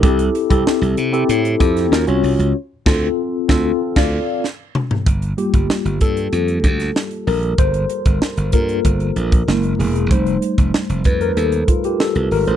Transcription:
<<
  \new Staff \with { instrumentName = "Tine electric piano" } { \time 4/4 \key g \dorian \tempo 4 = 95 <c' e' g' a'>8 r16 <c' e' g' a'>8. r16 <c' e' g' a'>8 r16 <c' e' g' a'>8 <des' f' ges' bes'>16 <des' f' ges' des''>8 r16 | r8 <c' f' a'>8 r8 <c' f' a'>8 r16 <d'' f''>8 r4 r16 | r8 g'4 a'2 bes'8 | c''4. bes'2 gis'8 |
c''8 r4 b'16 bes'16 a'8 f'16 g'16 a'8 bes'16 c''16 | }
  \new Staff \with { instrumentName = "Tine electric piano" } { \time 4/4 \key g \dorian r1 | r1 | r8 <g bes f'>2.~ <g bes f'>8~ | <g bes f'>8 r4 <bes f' a'>8 r4 <gis ais e'>8 r8 |
<g a ees'>4. r2 r8 | }
  \new Staff \with { instrumentName = "Slap bass" } { \clef bass \time 4/4 \key g \dorian c,8 r16 c,16 r16 c,16 c8 a,8 f,8 ees,16 c,16 c,16 des,16 | r8 d,8 r8 d,8 r16 d,8 r4 r16 | g,,8 r16 g,,16 r16 g,,16 g,8 f,8 d,8 r8 bes,,8 | g,,8 r16 g,,16 r16 g,,16 g,8 g,,8 bes,,8 fis,,8 e,,8 |
f,,8 r16 f,,16 r16 f,,16 f,8 ees,8 r8. c,16 aes,,16 a,,16 | }
  \new DrumStaff \with { instrumentName = "Drums" } \drummode { \time 4/4 <hh bd>16 hh16 hh16 <hh bd>16 sn16 hh16 hh16 hh16 hh16 hh16 <hh bd>16 <hh sn>16 sn16 hh16 hho16 hh16 | r8 <cymc bd sn>8 r8 <bd sn>8 r16 <cymc bd sn>8. sn8 toml16 tomfh16 | <hh bd>16 hh16 hh16 <hh bd>16 sn16 hh16 <hh bd>16 hh16 hh16 hh16 <hh bd>16 <hh sn>16 sn16 hh16 hho16 hh16 | <hh bd>16 hh16 hh16 <hh bd>16 sn16 hh16 <hh bd>16 hh16 <hh bd>16 hh16 hh16 <hh bd>16 sn16 hh16 hho16 hh16 |
<hh bd>16 hh16 hh16 <hh bd>16 sn16 hh16 <hh bd>16 hh16 hh16 hh16 <hh bd>16 hh16 sn16 hh16 hho16 hh16 | }
>>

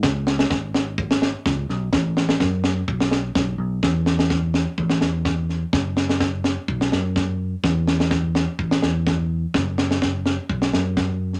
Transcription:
<<
  \new Staff \with { instrumentName = "Fingered electric bass" } { \clef bass \time 4/4 \key a \lydian \tempo 4 = 126 cis,4 gis,,2 cis,8 b,,8 | a,,4 fis,4 b,,4 b,,8 b,,8 | e,2 a,,8 e,4. | fis,,2 b,,8 fis,4. |
e,2 a,,8 e,4. | fis,,2 b,,8 fis,4. | }
  \new DrumStaff \with { instrumentName = "Drums" } \drummode { \time 4/4 <bd sn>8 sn16 sn16 <bd sn>8 sn8 bd16 sn16 sn8 <bd sn>8 sn8 | <bd sn>8 sn16 sn16 <bd sn>8 sn8 bd16 sn16 sn8 <bd sn>4 | <bd sn>8 sn16 sn16 <bd sn>8 sn8 bd16 sn16 sn8 <bd sn>8 sn8 | <bd sn>8 sn16 sn16 <bd sn>8 sn8 bd16 sn16 sn8 <bd sn>4 |
<bd sn>8 sn16 sn16 <bd sn>8 sn8 bd16 sn16 sn8 <bd sn>4 | <bd sn>8 sn16 sn16 <bd sn>8 sn8 bd16 sn16 sn8 <bd sn>8. sn16 | }
>>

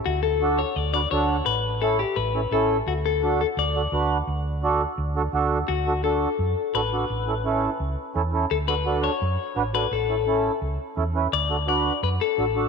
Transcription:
<<
  \new Staff \with { instrumentName = "Clean electric guitar" } { \time 4/4 \key d \major \tempo 4 = 170 fis'8 a'4 cis''8 d''8 d''8 cis''4 | b'4 a'8 g'8 b'4 a'8. r16 | fis'8 a'4 a'8 d''2~ | d''2. r4 |
fis'4 a'2 b'4~ | b'2.~ b'8 r8 | a'8 b'4 cis''2 b'8 | a'2 r2 |
d''4 d''4 b'8 a'4. | }
  \new Staff \with { instrumentName = "Accordion" } { \time 4/4 \key d \major r4 <d' fis' a'>8 r4 <d' fis' b'>8 <d' fis' a'>8 r8 | r4 <cis' e' a'>8 r4 <cis' e' a'>8 <cis' e' a'>8 r8 | r4 <d' fis' a'>8 r4 <d' fis' a'>8 <d' fis' b'>8 r8 | r4 <d' fis' a'>8 r4 <d' fis' a'>8 <d' fis' a'>8 r8 |
r8 <d' fis' a'>8 <d' fis' a'>8 r4. <d' fis' a'>8 <d' fis' a'>8 | r8 <cis' e' a'>8 <cis' e' a'>8 r4. <cis' e' a'>8 <cis' e' a'>8 | r8 <d' fis' a'>8 <d' fis' a'>8 r4. <d' fis' b'>8 <d' fis' a'>8 | r8 <cis' e' a'>8 <cis' e' a'>8 r4. <cis' e' a'>8 <cis' e' b'>8 |
r8 <d' fis' a'>8 <d' fis' b'>8 r4. <d' fis' a'>8 <d' fis' a'>8 | }
  \new Staff \with { instrumentName = "Fingered electric bass" } { \clef bass \time 4/4 \key d \major d,2 d,4 d,4 | a,,2 a,,4 a,,4 | d,2 d,4 d,4 | d,2 d,4 d,4 |
d,2 fis,8 r8 a,,4 | a,,2 cis,8 r8 e,4 | d,2 fis,8 r8 a,,4 | a,,2 cis,8 r8 e,4 |
d,2 fis,8 r8 a,,4 | }
>>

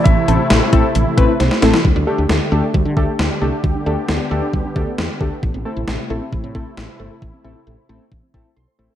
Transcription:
<<
  \new Staff \with { instrumentName = "Grand piano" } { \time 4/4 \key d \dorian \tempo 4 = 134 e''2. r4 | r1 | r1 | r1 |
r1 | }
  \new Staff \with { instrumentName = "Synth arpeggio sound" } { \time 4/4 \key d \dorian e16 e16 e16 e'16 r16 c''16 c''16 a'16 e16 e16 e16 e'16 c''16 c''16 c'16 e16 | g16 d'16 a'16 g'16 a'16 d''16 a'16 d'16 g16 d'16 a'16 g'16 a'16 d''16 d''16 a'16 | g16 d'16 a'16 g'16 a'16 d''16 a'16 d'16 g16 d'16 a'16 g'16 a'16 d''16 d''16 a'16 | e16 c'16 a'16 e'16 a'16 c''16 a'16 c'16 e16 c'16 a'16 e'16 a'16 c''16 c''16 a'16 |
e16 c'16 a'16 e'16 a'16 c''16 a'16 c'16 e16 c'16 a'16 e'16 a'16 c''16 c''16 a'16 | }
  \new Staff \with { instrumentName = "Synth keys" } { \time 4/4 \key d \dorian << { r1 | r1 | r1 | r1 |
r2. c'''4 | } \\ { r8 <a c' e' a'>8 r8 <a c' e' a'>8 r8 <a c' e' b'>8 r8 <a c' e' a'>8 | r8 <a d' g' a'>8 r8 <a d' g' a'>8 r8 <a d' g' a'>8 r8 <a d' g' a'>8 | r8 <a d' g' a'>8 r8 <a d' g' a'>8 r8 <a d' g' a'>8 r8 <a d' g' a'>8 | r8 <a c' e' a'>8 r8 <a c' e' a'>8 r8 <a c' e' a'>8 r8 <a c' e' a'>8 |
r8 <a c' e' a'>8 r8 <a c' e' a'>8 r8 <a c' e' a'>8 r8 <a c' e' a'>8 | } >> }
  \new Staff \with { instrumentName = "Analog synth pad" } { \time 4/4 \key d \dorian << { <c e'>1 | <d g'>1~ | <d g'>1 | <c e'>1~ |
<c e'>1 | } \\ { a1 | a1 | b1 | a1~ |
a1 | } >> }
  \new Staff \with { instrumentName = "Fretless electric bass" } { \clef bass \time 4/4 \key d \dorian a,,16 r16 a,,16 r16 a,,16 r16 a,,16 r16 a,,16 r16 a,,16 r16 b,,16 r16 a,,16 r16 | d,16 d,16 r16 d,16 d,16 r16 d,16 r16 d,16 d16 d,16 r16 d,16 r16 c,16 r16 | d,16 r16 d,16 r16 d,16 r16 d,16 r16 d,16 r16 d,16 r16 e,16 r16 d,16 r16 | a,,16 a,,16 r16 a,,16 a,,16 r16 a,,16 r16 a,,16 a,16 a,,16 r16 a,,16 r16 g,,16 r16 |
a,,16 r16 a,,16 r16 a,,16 r16 a,,16 r16 a,,16 r16 a,,16 r16 b,,16 r16 a,,16 r16 | }
  \new DrumStaff \with { instrumentName = "Drums" } \drummode { \time 4/4 <hh bd>8 hh8 <hh sn>8 <hh bd>8 hh8 <hh bd>8 <hh sn>16 sn16 <hh sn>16 sn16 | bd4 sn4 bd8 bd8 sn4 | bd4 sn4 bd8 bd8 sn8 bd8 | bd4 sn4 bd8 bd8 sn4 |
bd4 r4 bd8 bd8 r4 | }
>>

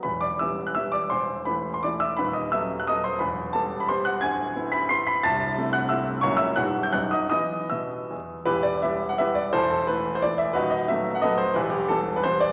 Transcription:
<<
  \new Staff \with { instrumentName = "Grand piano" } { \time 3/4 \key e \minor \tempo 4 = 174 <b' b''>8 <d'' d'''>8 <e'' e'''>8. fis'''16 <e'' e'''>8 <d'' d'''>8 | <c'' c'''>4 <b' b''>8. c'''16 <d'' d'''>8 <e'' e'''>8 | <b' b''>8 <dis'' dis'''>8 <e'' e'''>8. fis'''16 <dis'' dis'''>8 <c'' c'''>8 | <b' b''>4 <a' a''>8. b''16 <c'' c'''>8 <fis'' fis'''>8 |
<gis'' gis'''>4. <b'' b'''>8 <c''' c''''>8 <b'' b'''>8 | <a'' a'''>4. <fis'' fis'''>8 <e'' e'''>8 r8 | <cis'' cis'''>8 <e'' e'''>8 <fis'' fis'''>8. g'''16 <fis'' fis'''>8 <dis'' dis'''>8 | <dis'' dis'''>4 <e'' e'''>4 r4 |
<e' g' b'>8 d''8 <g' b' e''>8. fis''16 <g' b' e''>8 d''8 | <e' a' c''>8 a'8 b'8. c''16 d''8 e''8 | <dis' fis' b'>8 dis''8 e''8. fis''16 <a' b' dis''>8 c''8 | <e' g' b'>8 g'8 a'8. b'16 c''8 d''8 | }
  \new Staff \with { instrumentName = "Grand piano" } { \clef bass \time 3/4 \key e \minor <e,, e,>4 <e g b>4 <e g b>4 | <e,, e,>4 <e a e'>4 <e a e'>4 | <dis,, dis,>4 <fis b a'>4 <fis b a'>4 | <e,, e,>4 <g b g'>4 <g b g'>4 |
<d,, d,>4 <b e'>4 <b e'>4 | <c,, c,>4 <a c' e'>4 <a c' e'>4 | <cis,, cis, fis ais e'>4 <b,,, b,, g b e'>4 <b,,, b,, fis b dis'>4 | <e b e'>4 b,4 e,4 |
<e,, e,>4 <g b e'>4 <g b e'>4 | <e,, e,>4 <e a e'>4 <e a e'>4 | <dis,, dis,>4 <fis a b>4 <fis a b>4 | <e,, e,>4 <e g b>4 <e g b>4 | }
>>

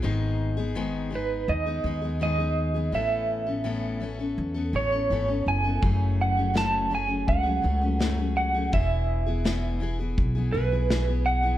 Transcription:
<<
  \new Staff \with { instrumentName = "Clean electric guitar" } { \time 4/4 \key e \major \tempo 4 = 83 r4. b'8 dis''4 dis''4 | e''2~ e''8 cis''4 gis''8~ | gis''8 fis''8 a''8 gis''8 fis''4. fis''8 | e''4. r4 b'4 fis''8 | }
  \new Staff \with { instrumentName = "Steel-string acoustic guitar" } { \time 4/4 \key e \major <gis, dis gis b dis' gis'>8. <gis b dis' gis'>16 <gis, dis gis b dis' gis'>8 <gis b dis' gis'>8. <gis b dis' gis'>16 <gis b dis' gis'>16 <gis b dis' gis'>16 <gis, dis gis b dis' gis'>16 <gis b dis' gis'>8 <gis b dis' gis'>16 | <a, e b cis' a'>8. <b cis' a'>16 <a, e b cis' a'>8 <e b cis' a'>16 <b cis' a'>8 <b cis' a'>16 <e b cis' a'>16 <b cis' a'>16 <a, e b cis' a'>16 <b cis' a'>8 <b cis' a'>16 | <fis, cis fis a cis' gis'>8. <fis a cis' gis'>16 <fis, cis fis a cis'>8 <fis a cis' gis'>16 <fis a cis' gis'>8 <fis a cis' gis'>16 <fis a cis' gis'>16 <fis a cis' gis'>16 <fis, cis fis a cis' gis'>16 <fis a cis' gis'>8 <fis a cis' gis'>16 | <e, b, e b e' gis'>8. <e b e' gis'>16 <e, b, e b e' gis'>8 <e b e' gis'>16 <e b e' gis'>8 <e b e' gis'>16 <e b e' gis'>16 <e b e' gis'>16 <e, b, e b e' gis'>16 <e b e' gis'>8 <e b e' gis'>16 | }
  \new Staff \with { instrumentName = "Upright bass" } { \clef bass \time 4/4 \key e \major gis,,2 dis,8 dis,4. | a,,2 e,8 a,,8 gis,,8 fis,,8 | fis,,2 cis,8 cis,4. | e,,2 b,,8 b,,4. | }
  \new DrumStaff \with { instrumentName = "Drums" } \drummode { \time 4/4 r4 r4 r4 r4 | r4 r4 r4 r4 | bd4 sn4 bd4 sn4 | bd4 sn4 bd4 sn4 | }
>>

